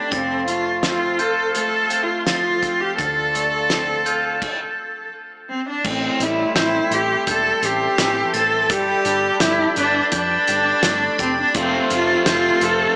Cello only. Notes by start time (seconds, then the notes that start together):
Already playing: D4
0.12 C4
0.47 F4
0.84 F4
1.20 A4
1.55 A4
2.03 F4
2.26 F4
2.81 G4
2.98 A4
5.49 C4
5.69 D4
5.86 C4
6.23 E4
6.59 E4
6.93 G4
7.30 A4
7.65 G4
8.35 A4
8.71 G4
9.42 E4
9.78 D4
10.14 D4
11.21 C4
11.41 D4
11.58 C4
11.94 F4
12.27 F4
12.64 A4